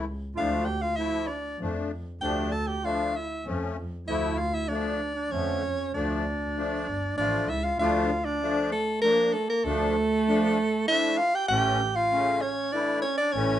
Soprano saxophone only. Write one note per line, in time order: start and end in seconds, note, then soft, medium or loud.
0.38 0.67 F5 medium
0.65 0.83 G5 medium
0.82 0.98 F5 medium
0.96 1.28 E5 medium
1.27 1.59 D5 medium
2.21 2.53 G5 medium
2.52 2.69 A5 medium
2.67 2.87 G5 loud
2.85 3.18 F5 medium
3.16 3.46 E5 medium
4.08 4.40 E5 medium
4.38 4.56 F5 loud
4.55 4.70 E5 medium
4.68 5.33 D5 medium
5.32 5.93 C#5 loud
5.94 7.14 D5 medium
7.18 7.51 D5 loud
7.49 7.65 E5 medium
7.64 7.79 F5 medium
7.80 8.27 F5 medium
8.25 8.72 D5 medium
8.72 9.01 A4 loud
9.02 9.35 A#4 loud
9.33 9.49 A4 loud
9.50 9.66 A#4 medium
9.65 10.87 A4 loud
10.88 11.19 E5 loud
11.18 11.37 F5 loud
11.35 11.48 G5 loud
11.49 11.97 G5 loud
11.96 12.43 F5 loud
12.41 12.74 C#5 loud
12.73 13.01 D5 loud
13.02 13.17 C#5 loud
13.18 13.34 D5 loud
13.32 13.59 C#5 loud